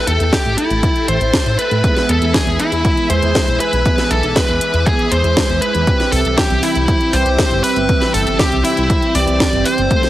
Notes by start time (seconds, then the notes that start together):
Already playing: A4 E5 G5 A5
0.07 E2 A4, closed hi-hat
0.20 E2, closed hi-hat
0.33 G4, kick, snare, closed hi-hat
0.45 A1, closed hi-hat
0.58 E4, closed hi-hat
0.71 A1, closed hi-hat
0.83 kick, closed hi-hat
0.96 closed hi-hat
1.08 A1 C5, closed hi-hat
1.21 A1, closed hi-hat
1.33 kick, snare, closed hi-hat
1.46 A2, closed hi-hat
1.59 B4, closed hi-hat
1.71 A2, closed hi-hat
1.84 E3 G#3 B3 G#4 G#5 B5 E6, kick, closed hi-hat
1.97 snare, closed hi-hat
2.09 E2 A4, closed hi-hat
2.22 E2, closed hi-hat
2.34 G#4, kick, snare, closed hi-hat
2.47 E2, closed hi-hat
2.60 E4, closed hi-hat
2.72 E2, closed hi-hat
2.85 kick, closed hi-hat
2.97 closed hi-hat
3.10 E2 E3 G#3 G#4 C5, closed hi-hat
3.22 E2, closed hi-hat
3.35 kick, snare, closed hi-hat
3.48 B1, closed hi-hat
3.60 B4, closed hi-hat
3.73 B1, closed hi-hat
3.85 E3 G#3 B3 G#4 D6, kick, closed hi-hat
3.98 snare, closed hi-hat
4.11 B1 A4, closed hi-hat
4.23 B1, closed hi-hat
4.36 B4, kick, snare, closed hi-hat
4.49 E2, closed hi-hat
4.61 closed hi-hat
4.74 E2, closed hi-hat
4.86 G#4, kick, closed hi-hat
4.99 closed hi-hat
5.11 E2 E3 G#3 G#4 C5, closed hi-hat
5.24 E2, closed hi-hat
5.37 kick, snare, closed hi-hat
5.49 E2, closed hi-hat
5.62 B4, closed hi-hat
5.75 E2, closed hi-hat
5.87 E3 G3 C4 G4 E5 G5 E6, kick, closed hi-hat
6.00 snare, closed hi-hat
6.12 C2 A4, open hi-hat
6.25 C2, closed hi-hat
6.38 G4, kick, snare, closed hi-hat
6.50 C2, closed hi-hat
6.63 E4, open hi-hat
6.75 C2, closed hi-hat
6.88 kick, closed hi-hat
7.01 closed hi-hat
7.13 C2 E3 G3 C4 G4 C5, open hi-hat
7.26 C2, closed hi-hat
7.38 kick, snare, closed hi-hat
7.51 G1, closed hi-hat
7.64 B4, open hi-hat
7.76 G1, closed hi-hat
7.89 E3 G3 C4 G4, kick, closed hi-hat
8.02 snare, closed hi-hat
8.14 G1 A4, open hi-hat
8.27 G1, closed hi-hat
8.39 G4, kick, snare, closed hi-hat
8.52 C2, closed hi-hat
8.64 E4, open hi-hat
8.77 C2, closed hi-hat
8.90 kick, closed hi-hat
9.02 closed hi-hat
9.15 C2 E3 G3 C4 G4 D5, open hi-hat
9.28 C2, closed hi-hat
9.40 kick, snare, closed hi-hat
9.53 G1, closed hi-hat
9.65 C5, open hi-hat
9.78 G1, closed hi-hat
9.91 F3 A3 C4 A4 F5 C6, kick, closed hi-hat, riser
10.03 snare, closed hi-hat